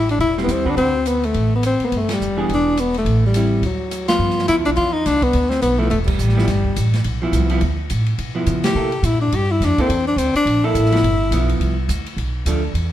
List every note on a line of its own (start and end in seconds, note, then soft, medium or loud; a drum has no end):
0.00 0.17 A1 medium
0.09 0.20 D4 medium
0.09 ride soft
0.19 0.46 E1 medium
0.19 0.36 E4 medium
0.19 ride soft
0.37 0.64 G3 medium
0.37 0.64 C4 medium
0.37 0.65 E4 medium
0.37 snare soft
0.43 0.53 B3 medium
0.48 0.75 D#2 medium
0.48 cross-stick medium
0.48 hi-hat pedal medium
0.48 ride medium
0.52 0.71 C4 medium
0.65 0.75 D3 medium
0.65 0.75 C4 medium
0.65 0.76 F#4 medium
0.65 0.76 B4 medium
0.65 kick soft
0.70 0.76 D4 medium
0.76 1.31 D2 medium
0.76 0.92 D3 medium
0.76 0.92 C4 medium
0.76 1.09 C4 medium
0.76 0.93 F#4 medium
0.76 0.93 B4 medium
0.76 ride medium
1.06 1.27 B3 medium
1.06 hi-hat pedal medium
1.06 ride medium
1.23 1.55 A3 medium
1.23 ride soft
1.34 1.77 A1 medium
1.34 ride soft
1.55 1.63 B3 medium
1.63 1.82 C4 medium
1.63 cross-stick medium
1.63 hi-hat pedal soft
1.63 ride medium
1.80 muted upright bass stroke soft
1.80 ride soft
1.84 1.87 A#3 medium
1.84 1.98 B3 medium
1.92 2.18 G1 medium
1.92 ride medium
1.96 2.15 A3 medium
2.09 snare medium
2.09 ride medium
2.13 2.51 G3 medium
2.20 2.47 F1 medium
2.20 hi-hat pedal medium
2.37 2.75 E3 soft
2.37 2.75 B3 medium
2.37 2.75 D4 medium
2.37 2.75 G#4 medium
2.49 3.03 E1 medium
2.49 ride medium
2.54 2.82 D4 medium
2.77 2.98 B3 medium
2.77 cross-stick medium
2.77 hi-hat pedal medium
2.77 ride medium
2.94 3.22 A3 medium
2.94 ride soft
3.05 3.60 A1 medium
3.05 ride medium
3.26 3.62 G3 medium
3.34 3.64 G3 soft
3.34 3.64 C4 medium
3.34 3.64 E4 medium
3.34 hi-hat pedal medium
3.34 ride medium
3.62 4.17 D2 medium
3.62 4.07 F#3 medium
3.62 ride medium
3.91 cross-stick medium
3.91 hi-hat pedal medium
3.91 ride medium
4.08 4.46 F3 medium
4.08 4.47 B3 medium
4.08 4.46 F4 medium
4.08 snare medium
4.08 ride medium
4.19 4.47 G2 medium
4.30 snare soft
4.39 snare soft
4.48 4.57 F2 medium
4.48 4.90 F3 medium
4.48 4.90 B3 medium
4.48 4.56 E4 medium
4.48 4.91 E4 medium
4.48 hi-hat pedal soft
4.48 ride medium
4.57 4.67 D2 medium
4.65 4.77 B1 medium
4.65 4.71 D4 medium
4.65 ride soft
4.76 5.05 E2 medium
4.76 4.94 F4 medium
4.76 ride medium
4.93 5.08 D#4 medium
5.06 5.33 C2 medium
5.06 5.25 D4 loud
5.06 snare soft
5.06 hi-hat pedal soft
5.06 ride medium
5.22 5.51 B3 medium
5.22 kick medium
5.22 ride soft
5.33 5.62 D2 medium
5.33 ride medium
5.50 5.61 C4 medium
5.50 snare soft
5.62 5.90 B1 medium
5.62 5.81 B3 medium
5.62 hi-hat pedal medium
5.62 ride medium
5.78 5.89 F3 medium
5.78 5.89 A3 medium
5.78 5.90 B3 medium
5.78 5.90 E4 medium
5.90 6.18 E1 medium
5.90 5.98 A3 medium
5.90 ride medium
6.06 7.17 G3 medium
6.06 kick medium
6.06 crash medium
6.18 6.46 A1 medium
6.18 hi-hat pedal medium
6.29 snare soft
6.37 6.47 F3 medium
6.37 6.47 B3 medium
6.37 6.48 E4 medium
6.37 snare soft
6.47 6.75 G1 medium
6.47 snare soft
6.47 ride medium
6.65 kick medium
6.76 7.04 A1 medium
6.76 hi-hat pedal medium
6.76 ride medium
6.94 snare soft
6.94 ride soft
7.04 7.32 B1 medium
7.04 ride medium
7.22 7.49 F3 medium
7.22 7.49 B3 medium
7.22 7.49 E4 medium
7.32 7.61 C2 medium
7.32 hi-hat pedal medium
7.32 ride medium
7.49 7.61 F3 medium
7.49 7.61 B3 medium
7.49 7.62 E4 medium
7.49 ride soft
7.61 7.89 D2 medium
7.61 ride medium
7.90 8.18 A2 medium
7.90 hi-hat pedal medium
7.90 ride medium
8.06 ride soft
8.18 8.46 B2 medium
8.18 ride medium
8.35 8.73 F3 medium
8.35 8.73 B3 medium
8.35 8.74 E4 medium
8.46 8.75 C#3 medium
8.46 hi-hat pedal medium
8.46 ride medium
8.64 9.06 G4 medium
8.64 snare medium
8.64 ride medium
8.75 9.02 C3 medium
8.75 8.91 A#3 soft
8.75 8.92 E4 medium
8.75 8.91 A4 medium
8.92 ride soft
9.03 9.31 A#2 medium
9.03 9.21 E4 medium
9.03 hi-hat pedal medium
9.03 ride medium
9.21 9.37 D4 medium
9.32 9.60 G2 medium
9.32 9.53 G4 medium
9.32 ride medium
9.51 9.66 E4 medium
9.60 9.77 F2 medium
9.60 snare soft
9.60 hi-hat pedal soft
9.60 ride medium
9.65 9.82 D4 medium
9.78 9.89 A#3 medium
9.78 10.07 C4 medium
9.78 9.89 E4 medium
9.78 9.89 A4 medium
9.78 muted upright bass stroke soft
9.78 kick medium
9.78 ride soft
9.89 10.16 E2 medium
9.89 ride medium
10.08 10.19 D4 medium
10.16 10.33 D2 medium
10.16 10.35 C4 medium
10.16 hi-hat pedal medium
10.16 ride medium
10.34 10.67 D4 medium
10.34 muted upright bass stroke soft
10.34 ride soft
10.45 10.74 A#1 medium
10.45 ride medium
10.64 10.91 A#3 medium
10.64 10.91 E4 medium
10.64 11.78 E4 medium
10.64 10.91 A4 medium
10.74 11.02 A1 medium
10.74 hi-hat pedal medium
10.74 ride medium
10.85 snare soft
10.92 11.02 F3 medium
10.92 11.03 B3 medium
10.92 11.03 E4 medium
10.92 snare soft
10.92 ride soft
11.02 11.30 G1 medium
11.02 ride medium
11.31 11.59 B1 medium
11.31 11.74 F3 medium
11.31 11.75 B3 medium
11.31 11.75 E4 medium
11.31 hi-hat pedal medium
11.31 ride medium
11.49 ride soft
11.60 11.88 C2 medium
11.60 ride medium
11.89 12.16 D2 medium
11.89 hi-hat pedal medium
11.89 ride medium
12.06 ride soft
12.17 12.45 B1 medium
12.17 ride medium
12.45 12.73 D2 medium
12.45 12.62 F3 medium
12.45 12.62 A3 medium
12.45 12.63 D4 medium
12.45 hi-hat pedal medium
12.45 ride medium
12.74 12.92 E2 medium
12.74 ride medium